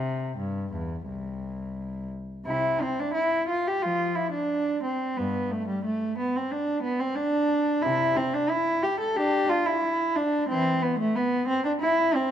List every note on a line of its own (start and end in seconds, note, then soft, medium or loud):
0.00 0.36 C3 medium
0.38 0.71 G2 medium
0.72 1.06 E2 soft
1.08 2.10 C2 soft
2.46 2.78 C3 medium
2.46 2.79 E4 medium
2.81 2.98 C4 medium
2.99 3.16 D4 medium
3.14 3.47 E4 medium
3.49 3.65 F4 medium
3.67 3.83 G4 medium
3.82 4.14 F3 medium
3.82 4.16 F4 medium
4.15 4.32 E4 medium
4.32 4.82 D4 medium
4.83 5.17 C4 medium
5.17 5.49 G2 medium
5.17 5.51 B3 medium
5.51 5.68 A3 medium
5.68 5.85 G3 medium
5.85 6.18 A3 medium
6.18 6.35 B3 medium
6.36 6.52 C4 medium
6.51 6.85 D4 medium
6.83 7.00 B3 medium
6.99 7.17 C4 medium
7.15 7.84 D4 medium
7.82 8.15 C3 medium
7.82 8.17 E4 medium
8.16 8.34 C4 medium
8.34 8.51 D4 medium
8.49 8.84 E4 medium
8.83 9.00 G4 medium
9.00 9.17 A4 medium
9.16 9.48 D4 medium
9.16 9.50 G4 medium
9.49 9.67 F4 medium
9.66 10.16 E4 medium
10.15 10.49 D4 medium
10.49 10.80 E3 medium
10.49 10.82 C4 medium
10.82 10.99 B3 medium
10.99 11.15 A3 medium
11.16 11.48 B3 medium
11.48 11.64 C4 medium
11.65 11.71 D4 medium
11.81 12.13 E4 medium
12.15 12.31 C4 medium